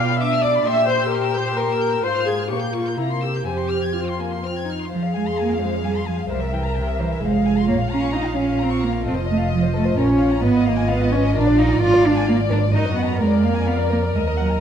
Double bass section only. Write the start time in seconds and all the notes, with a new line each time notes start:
4.92 F2
6.30 C2
7.22 F1
7.69 A#1
9.06 F1
9.98 A#1
10.43 G#1
11.35 A#1
11.81 G#1
12.74 F#2
13.21 F2
14.15 D#2